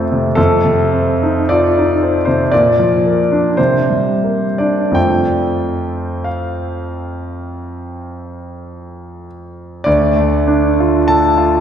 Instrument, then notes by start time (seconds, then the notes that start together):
grand piano
Already playing: F2 C3 A3 C4 F4 C5
0.12 C3
0.35 F2 A4
0.65 C3
0.93 C4
1.23 D#4
1.49 F4 D5
1.78 D#4
2.03 C4
2.25 C3 C5
2.52 A#2 D5
2.79 F3
3.06 A#3
3.32 D4
3.57 C3 C5
3.90 G3
4.24 A#3
4.58 D4 D5
4.92 F2 A3 C4 F4 G5
6.24 F5
9.84 D2 D5
10.16 A3
10.48 D4
10.80 F4
11.08 A4 A5
11.38 F4